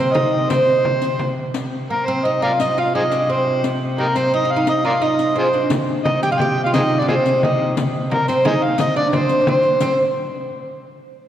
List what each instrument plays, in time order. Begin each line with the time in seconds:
Already playing: viola da gamba C3, oud C4, harmonica C5
0.14 oud D#4, harmonica D#5, frame drum
0.50 oud C4, harmonica C5, riq, frame drum
0.85 frame drum
1.02 riq, frame drum
1.19 riq, frame drum
1.53 viola da gamba C3, riq
1.90 oud A#3, harmonica A#4
2.06 oud C4, harmonica C5
2.25 oud D#4, harmonica D#5
2.42 oud F4, harmonica A#4 D5 F5
2.60 oud D#4, harmonica D#5, riq
2.78 oud F4, harmonica F5
2.95 oud D#4, harmonica G#4 C5 D#5
3.11 oud D4, riq
3.29 oud C4, harmonica C5
3.64 riq
3.98 oud A#3, harmonica D#4 G4 A#4
4.15 oud C4, harmonica C5, riq
4.33 oud D#4, harmonica D#5
4.45 oud D#4
4.51 harmonica F5
4.56 oud D#4
4.67 oud D#4, harmonica D#5, riq
4.84 oud F4, harmonica A#4 D5 F5, riq
5.02 oud D#4, harmonica D#5, riq
5.19 riq
5.36 oud C4, harmonica F4 G#4 C5
5.53 oud D4, riq
5.70 viola da gamba C3, riq, frame drum
6.05 oud D#4, harmonica D#5, frame drum
6.23 oud G4, harmonica G5, riq
6.31 oud F4, harmonica F5
6.40 oud G4, harmonica G5, frame drum
6.64 oud F4, harmonica F5
6.73 oud D#4, harmonica G#4 C5 D#5, riq, frame drum
6.99 oud D4, harmonica D5
7.08 oud C4, harmonica F4 G#4 C5, frame drum
7.26 riq
7.43 oud D#4, harmonica D#5, frame drum
7.77 riq, frame drum
8.11 oud A#3, harmonica A#4, frame drum
8.28 oud C4, harmonica C5, riq
8.45 oud D#4, harmonica G#4 C5 D#5, frame drum
8.64 harmonica F5
8.78 oud D#4, harmonica D#5, riq, frame drum
8.96 oud D4, harmonica D5, frame drum
9.09 harmonica D5, riq
9.13 oud C4, harmonica C5, frame drum
9.29 riq, frame drum
9.42 oud D4
9.47 oud C4, harmonica C5, frame drum
9.63 riq
9.81 oud C4, harmonica C5, riq, frame drum